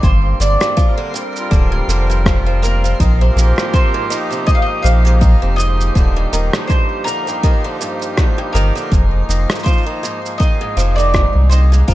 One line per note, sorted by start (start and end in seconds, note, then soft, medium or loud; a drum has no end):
0.00 0.34 G1 medium
0.00 0.39 G2 medium
0.00 3.00 G3 medium
0.00 1.23 A#3 medium
0.00 11.94 C5 medium
0.00 0.40 C5 medium
0.00 11.94 C6 medium
0.00 kick loud
0.00 cabasa soft
0.40 0.57 G1 medium
0.40 0.59 D3 medium
0.40 1.11 D5 medium
0.40 cabasa medium
0.49 3.97 C4 medium
0.61 0.75 G2 medium
0.61 cross-stick medium
0.61 cabasa soft
0.77 0.96 F3 loud
0.77 kick loud
0.77 cabasa soft
0.88 4.20 A#4 medium
0.98 1.12 D3 medium
1.14 1.50 G2 medium
1.14 cabasa medium
1.36 4.20 F4 medium
1.36 cabasa medium
1.51 1.82 D1 medium
1.51 1.70 D3 medium
1.51 kick loud
1.51 cabasa soft
1.72 1.87 G2 medium
1.88 2.94 F1 loud
1.88 2.07 D3 medium
1.88 cabasa medium
2.10 2.24 G2 medium
2.10 cabasa soft
2.26 2.45 F3 medium
2.26 kick loud
2.26 cross-stick medium
2.26 cabasa soft
2.46 2.61 F3 medium
2.62 2.81 A#3 medium
2.62 3.73 A#4 loud
2.62 cabasa medium
2.84 2.98 F3 medium
2.84 cabasa soft
3.00 3.30 A#1 loud
3.00 3.18 D#3 medium
3.00 11.86 F3 medium
3.00 kick loud
3.00 cabasa soft
3.21 3.35 C3 medium
3.32 11.94 A#3 medium
3.36 3.53 A#1 loud
3.36 3.72 G#2 medium
3.36 8.92 G4 loud
3.36 cabasa medium
3.58 cross-stick medium
3.58 cabasa soft
3.73 3.92 C3 medium
3.73 4.46 C5 loud
3.73 kick loud
3.73 cabasa soft
3.94 4.09 G#2 medium
4.10 4.29 D#3 loud
4.10 11.88 D#4 medium
4.10 cabasa medium
4.31 4.46 C3 medium
4.31 cabasa soft
4.47 4.83 G#2 medium
4.47 4.55 D#5 loud
4.47 kick loud
4.47 cabasa soft
4.55 4.63 F5 medium
4.62 4.85 D#5 loud
4.82 5.36 A#1 loud
4.82 5.03 C3 medium
4.82 5.60 F5 loud
4.82 cabasa medium
5.05 5.20 G#2 medium
5.05 cabasa soft
5.21 5.40 D#3 medium
5.21 kick loud
5.21 cabasa soft
5.42 5.91 F1 medium
5.42 5.57 C3 medium
5.56 5.94 G#2 medium
5.56 6.67 D#5 loud
5.56 cabasa medium
5.81 cabasa soft
5.95 6.26 D#1 medium
5.95 6.14 D3 medium
5.95 kick medium
5.95 cabasa soft
6.16 6.31 G2 medium
6.33 6.49 D#1 medium
6.33 6.52 D#3 loud
6.33 cabasa medium
6.53 6.68 D3 medium
6.53 cross-stick medium
6.53 cabasa soft
6.67 7.05 G2 medium
6.67 7.04 C5 loud
6.67 kick loud
6.67 cabasa soft
7.04 7.25 D3 medium
7.04 8.51 A#4 loud
7.04 cabasa medium
7.27 7.42 G2 medium
7.27 cabasa soft
7.43 7.62 D#3 loud
7.43 kick loud
7.43 cabasa soft
7.64 7.79 D3 medium
7.81 8.16 G2 medium
7.81 cabasa medium
8.02 cabasa soft
8.17 8.36 D3 medium
8.17 kick loud
8.17 cross-stick medium
8.17 cabasa soft
8.38 8.53 G2 medium
8.53 8.71 G1 medium
8.53 8.74 D#3 loud
8.53 9.63 A#4 loud
8.53 cabasa medium
8.75 8.90 D3 medium
8.75 cabasa soft
8.92 9.23 F1 loud
8.92 9.27 G#2 medium
8.92 kick medium
8.92 cabasa soft
9.29 9.46 F1 medium
9.29 9.48 D#3 medium
9.29 cabasa medium
9.49 9.64 G#2 medium
9.49 cross-stick medium
9.49 cabasa soft
9.55 cabasa soft
9.59 cabasa soft
9.63 9.85 F3 loud
9.63 10.37 C5 loud
9.63 kick loud
9.63 cabasa soft
9.67 cabasa soft
9.78 cabasa soft
9.83 10.01 D#3 medium
9.83 cabasa soft
10.03 10.39 G#2 medium
10.03 cabasa medium
10.26 11.89 G#4 medium
10.26 cabasa soft
10.38 10.59 D#3 medium
10.38 10.95 D#5 medium
10.38 kick loud
10.38 cabasa soft
10.61 10.76 G#2 medium
10.77 11.28 F1 loud
10.77 10.96 F3 loud
10.77 cabasa medium
10.96 11.13 D#3 medium
10.96 11.49 D5 loud
10.96 cabasa soft
11.14 11.49 G#2 medium
11.14 kick loud
11.14 cross-stick medium
11.14 cabasa soft
11.35 11.83 C2 medium
11.49 11.70 D#3 medium
11.49 11.60 C5 loud
11.49 cabasa medium
11.72 11.87 G#2 medium
11.72 cabasa soft
11.88 11.94 G1 medium
11.88 11.94 F3 medium
11.88 11.94 F3 loud
11.88 11.94 A#4 medium
11.88 kick medium
11.88 cabasa soft